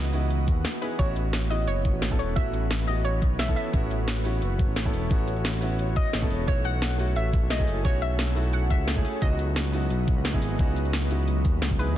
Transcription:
Already playing: analog synth bass C#2, ambient pad E3 F#4 B4 D#5, grand piano B3 D#4 E4 F#4 G#4
0.12 analog synth bass C#2, grand piano B3 D#4 E4 F#4, open hi-hat, shaker
0.30 closed hi-hat
0.48 analog synth bass D#2, kick, closed hi-hat, shaker
0.65 snare, closed hi-hat
0.74 closed hi-hat
0.81 grand piano B3 D#4 E4 G#4, synth pluck B4, open hi-hat, shaker
0.98 analog synth bass A1, grand piano B3 C#4 E4 F#4, ambient pad B4 C#5, synth pluck C#5, kick, closed hi-hat
1.16 closed hi-hat, shaker
1.33 snare, closed hi-hat
1.49 grand piano B3 C#4 E4 F#4, synth pluck D#5, open hi-hat, shaker
1.67 analog synth bass F#1, synth pluck C#5, closed hi-hat
1.85 kick, closed hi-hat, shaker
1.94 analog synth bass A1
2.02 snare, closed hi-hat
2.10 grand piano B3 C#4 E4 A4, kick
2.19 analog synth bass E1, synth pluck C#5, open hi-hat, shaker
2.35 analog synth bass A1, grand piano B3 C#4 E4 F#4, synth pluck E5, kick, closed hi-hat
2.54 closed hi-hat, shaker
2.71 snare, closed hi-hat
2.87 analog synth bass A1, grand piano B3 C#4 E4 F#4, synth pluck D#5, open hi-hat, shaker
3.04 synth pluck C#5, closed hi-hat
3.22 analog synth bass B1, kick, closed hi-hat, shaker
3.39 synth pluck E5, snare, closed hi-hat
3.48 grand piano B3 C#4 E4 A4, kick
3.56 synth pluck E5, open hi-hat, shaker
3.72 analog synth bass A1, grand piano B3 C#4 E4 F#4, kick, closed hi-hat
3.91 closed hi-hat, shaker
4.08 snare, closed hi-hat
4.24 grand piano B3 C#4 E4 F#4, open hi-hat, shaker
4.42 analog synth bass F#1, closed hi-hat
4.59 kick, closed hi-hat, shaker
4.68 analog synth bass A1
4.76 snare, closed hi-hat
4.85 grand piano B3 C#4 E4 A4, kick
4.93 analog synth bass E1, open hi-hat, shaker
5.10 analog synth bass A1, grand piano B3 C#4 E4 F#4, kick, closed hi-hat
5.28 closed hi-hat, shaker
5.37 closed hi-hat
5.45 snare, closed hi-hat
5.61 analog synth bass A1, grand piano B3 C#4 E4 F#4, open hi-hat, shaker
5.79 closed hi-hat
5.88 shaker
5.96 synth pluck D#5, kick, closed hi-hat, shaker
6.13 analog synth bass A1, snare, closed hi-hat
6.21 grand piano B3 C#4 E4 A4, kick
6.30 analog synth bass E1, open hi-hat, shaker
6.46 analog synth bass B1, grand piano A3 C#4 E4 F#4, ambient pad E4 F#4 A4, synth pluck C#5, kick, closed hi-hat
6.65 synth pluck F#5, closed hi-hat, shaker
6.82 snare, closed hi-hat
6.98 grand piano A3 C#4 E4 F#4, open hi-hat, shaker
7.16 analog synth bass A1, synth pluck E5, closed hi-hat
7.33 kick, closed hi-hat, shaker
7.42 analog synth bass B1
7.50 synth pluck D#5, snare, closed hi-hat
7.59 grand piano A3 C#4 E4 G#4, kick
7.67 analog synth bass F#1, open hi-hat, shaker
7.84 analog synth bass B1, grand piano A3 C#4 E4 F#4, synth pluck C#5, kick, closed hi-hat
8.02 synth pluck E5, closed hi-hat, shaker
8.19 snare, closed hi-hat
8.35 analog synth bass B1, grand piano A3 C#4 E4 F#4, open hi-hat, shaker
8.53 synth pluck F#5, closed hi-hat
8.70 analog synth bass C#2, synth pluck E5, kick, closed hi-hat, shaker
8.88 snare, closed hi-hat
8.96 grand piano A3 C#4 E4 G#4, kick
9.05 open hi-hat, shaker
9.21 analog synth bass C#2, ambient pad F#3 B4 D#5, grand piano B3 D#4 E4 F#4, synth pluck D#5, kick, closed hi-hat
9.39 closed hi-hat, shaker
9.56 snare, closed hi-hat
9.72 grand piano B3 D#4 E4 F#4, open hi-hat, shaker
9.90 analog synth bass B1, closed hi-hat
10.08 kick, closed hi-hat, shaker
10.16 analog synth bass C#2
10.25 snare, closed hi-hat
10.33 grand piano B3 D#4 E4 G#4, kick
10.42 analog synth bass G#1, open hi-hat, shaker
10.58 analog synth bass C#2, grand piano B3 D#4 E4 F#4, kick, closed hi-hat
10.68 closed hi-hat
10.76 closed hi-hat, shaker
10.85 closed hi-hat, shaker
10.93 snare, closed hi-hat
11.09 analog synth bass C#2, grand piano B3 D#4 E4 F#4, open hi-hat, shaker
11.28 closed hi-hat
11.45 analog synth bass D#2, kick, closed hi-hat, shaker
11.62 analog synth bass C#2, snare, closed hi-hat
11.71 kick, closed hi-hat
11.79 grand piano B3 D#4 E4 G#4, synth pluck B4, open hi-hat, shaker
11.88 analog synth bass D#2

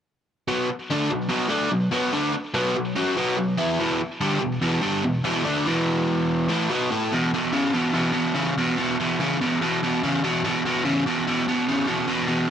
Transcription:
0.48 overdriven electric guitar B2 F#3 B3
0.70 muted overdriven electric guitar stroke
0.90 overdriven electric guitar D3 A3 D4
1.11 overdriven electric guitar B2 F#3
1.29 overdriven electric guitar B2 F#3 B3
1.49 overdriven electric guitar D3 A3 D4
1.71 overdriven electric guitar B2 F#3
1.91 overdriven electric guitar B2 F#3 B3
2.12 overdriven electric guitar D3 A3 D4
2.34 muted overdriven electric guitar stroke
2.54 overdriven electric guitar B2 F#3 B3
2.75 overdriven electric guitar B2 F#3
2.96 overdriven electric guitar F#3 C#4 F#4
3.17 overdriven electric guitar B2 F#3 B3
3.38 overdriven electric guitar B2 F#3
3.58 overdriven electric guitar E3 B3 E4
3.80 overdriven electric guitar E2 B2 E3
4.00 muted overdriven electric guitar stroke
4.21 overdriven electric guitar G2 D3 G3
4.40 overdriven electric guitar E2 B2
4.62 overdriven electric guitar E2 B2 E3
4.81 overdriven electric guitar G2 D3 G3
5.04 overdriven electric guitar E2 B2
5.24 overdriven electric guitar E2 B2 E3
5.44 overdriven electric guitar D3 A3 D4
5.65 overdriven electric guitar E2 B2 E3
6.49 overdriven electric guitar A2 E3 A3
6.70 overdriven electric guitar B2 F#3 B3
6.91 overdriven electric guitar A3 E4 A4
7.12 overdriven electric guitar E2 B2
7.34 overdriven electric guitar E2 B2
7.52 overdriven electric guitar E2 C#3
7.73 overdriven electric guitar E2 B2
7.94 overdriven electric guitar E2 B2
8.13 overdriven electric guitar E2 B2
8.35 overdriven electric guitar E2 C#3
8.58 overdriven electric guitar E2 B2
8.77 overdriven electric guitar E2 B2
9.00 overdriven electric guitar E2 B2
9.20 overdriven electric guitar E2 C#3
9.41 overdriven electric guitar E2 B2
9.61 overdriven electric guitar E2 B2
9.83 overdriven electric guitar E2 B2
10.03 overdriven electric guitar E2 C#3
10.24 overdriven electric guitar E2 B2
10.44 overdriven electric guitar E2 B2
10.66 overdriven electric guitar E2 B2
10.85 overdriven electric guitar E2 C#3
11.06 overdriven electric guitar E2 B2
11.27 overdriven electric guitar E2 B2
11.48 overdriven electric guitar E2 B2
11.68 overdriven electric guitar E2 C#3
11.86 overdriven electric guitar E2 B2
12.08 overdriven electric guitar E2 B2
12.28 overdriven electric guitar E2 B2

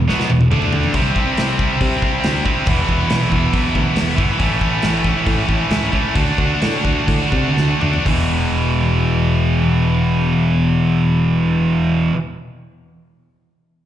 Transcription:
0.08 picked electric bass B1, distorted electric guitar B2 F#3 B3, snare
0.20 snare
0.29 picked electric bass E1, distorted electric guitar E2 B2, high tom
0.41 high tom
0.51 picked electric bass D2, distorted electric guitar D3 A3 D4, mid tom
0.62 mid tom
0.73 floor tom
0.84 floor tom
0.93 picked electric bass C2, distorted electric guitar C3 G3 C4 E4, kick, open hi-hat
1.02 distorted electric guitar C4 E4
1.11 distorted electric guitar C4 E4
1.16 distorted electric guitar C4, kick
1.20 distorted electric guitar E4
1.27 distorted electric guitar C4 E4
1.34 distorted electric guitar C4 E4, snare, open hi-hat
1.39 picked electric bass C2, distorted electric guitar C4 E4
1.50 distorted electric guitar C4 E4
1.58 distorted electric guitar C4 E4, kick
1.65 distorted electric guitar C4 E4
1.73 distorted electric guitar C4 E4
1.81 picked electric bass C3, distorted electric guitar C4 E4, kick, open hi-hat
1.89 distorted electric guitar C4 E4
1.96 distorted electric guitar C4 E4
2.02 picked electric bass C2, distorted electric guitar C4 E4, kick
2.12 distorted electric guitar C4 E4
2.20 distorted electric guitar C4 E4, open hi-hat
2.24 picked electric bass D2, distorted electric guitar C4, snare
2.28 distorted electric guitar E4
2.36 distorted electric guitar C4 E4
2.43 distorted electric guitar G3 C4 E4, kick
2.49 distorted electric guitar C3 C4
2.53 distorted electric guitar E4
2.59 distorted electric guitar C4 E4
2.67 picked electric bass E1, distorted electric guitar E2 B2 B3 E4, kick, open hi-hat
2.71 distorted electric guitar E3
2.75 distorted electric guitar B3 E4
2.83 distorted electric guitar B3 E4
2.89 picked electric bass E1, distorted electric guitar B3 E4, kick
2.99 distorted electric guitar B3 E4
3.07 distorted electric guitar B3 E4, snare, open hi-hat
3.12 picked electric bass B1, distorted electric guitar B3 E4
3.23 distorted electric guitar B3 E4
3.29 picked electric bass E1, distorted electric guitar B3 E4, kick
3.38 distorted electric guitar B3 E4
3.45 distorted electric guitar B3 E4
3.52 picked electric bass B1, distorted electric guitar B3 E4, kick, open hi-hat
3.62 distorted electric guitar B3 E4
3.69 distorted electric guitar B3 E4
3.75 picked electric bass D2, distorted electric guitar B3 E4, kick
3.84 distorted electric guitar B3 E4
3.92 distorted electric guitar B3 E4
3.96 picked electric bass E1, distorted electric guitar E4, snare, open hi-hat
4.01 distorted electric guitar B3
4.08 distorted electric guitar B3 E4
4.16 picked electric bass G1, distorted electric guitar E3 B3 E4, kick
4.20 distorted electric guitar E2 B2
4.24 distorted electric guitar B3 E4
4.32 distorted electric guitar B3 E4
4.39 picked electric bass A1, distorted electric guitar A2 E3 C#4 E4, kick, open hi-hat
4.43 distorted electric guitar A3 C#4
4.48 distorted electric guitar E4
4.54 distorted electric guitar C#4 E4
4.61 distorted electric guitar C#4 E4, kick
4.69 distorted electric guitar C#4 E4
4.78 distorted electric guitar C#4 E4
4.82 picked electric bass A1, distorted electric guitar C#4, snare, open hi-hat
4.87 distorted electric guitar E4
4.92 distorted electric guitar C#4 E4
5.00 distorted electric guitar C#4 E4
5.04 distorted electric guitar C#4, kick
5.09 distorted electric guitar E4
5.16 distorted electric guitar C#4 E4
5.22 distorted electric guitar C#4 E4, open hi-hat
5.27 picked electric bass A2, distorted electric guitar C#4, kick
5.32 distorted electric guitar E4
5.38 distorted electric guitar C#4 E4
5.46 picked electric bass A1, distorted electric guitar C#4 E4, kick
5.53 distorted electric guitar C#4 E4
5.61 distorted electric guitar C#4 E4
5.68 picked electric bass C#2, distorted electric guitar C#4 E4, snare, open hi-hat
5.77 distorted electric guitar C#4 E4
5.84 distorted electric guitar C#4 E4
5.91 distorted electric guitar A2 E3 A3 C#4 E4, kick
5.99 distorted electric guitar C#4 E4
6.08 distorted electric guitar C#4 E4
6.13 picked electric bass D2, distorted electric guitar D3 A3 D4 F#4, kick, open hi-hat
6.22 distorted electric guitar D4 F#4
6.30 distorted electric guitar D4 F#4
6.37 picked electric bass D2, distorted electric guitar D4 F#4, kick
6.45 distorted electric guitar D4 F#4
6.53 distorted electric guitar D4 F#4
6.60 picked electric bass A2, distorted electric guitar D4 F#4, snare, open hi-hat
6.68 distorted electric guitar D4 F#4
6.76 distorted electric guitar D4 F#4
6.84 picked electric bass D2, distorted electric guitar D4 F#4, kick
6.91 distorted electric guitar D4 F#4
6.99 distorted electric guitar D4 F#4
7.07 picked electric bass A2, distorted electric guitar D4 F#4, kick, open hi-hat
7.14 distorted electric guitar D4 F#4
7.21 distorted electric guitar D4 F#4
7.30 picked electric bass C3, distorted electric guitar D4 F#4, kick
7.38 distorted electric guitar D4 F#4
7.45 distorted electric guitar D4 F#4
7.52 distorted electric guitar D4 F#4
7.57 picked electric bass D2, distorted electric guitar D4 F#4, snare
7.68 distorted electric guitar D4 F#4
7.76 distorted electric guitar D4 F#4
7.80 picked electric bass D2, distorted electric guitar D3 A3 D4, mid tom
7.85 distorted electric guitar F#4
7.92 distorted electric guitar D4 F#4, floor tom
7.98 distorted electric guitar D4 F#4
8.05 picked electric bass E1, distorted electric guitar E2 B2 E3, kick, open hi-hat
8.09 distorted electric guitar E3

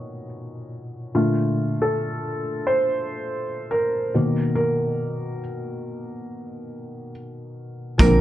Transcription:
Already playing: felt piano C#5 D#5
1.14 felt piano A#2 D3 A3 F4
1.82 felt piano A4
2.67 felt piano C5
3.71 felt piano A#4
4.14 felt piano B2 D#3 A#3
4.55 felt piano A#4
7.98 upright bass A#1, felt piano F3 A#3 C4, upright piano A#4, kick, closed hi-hat
8.03 felt piano D3 A#4

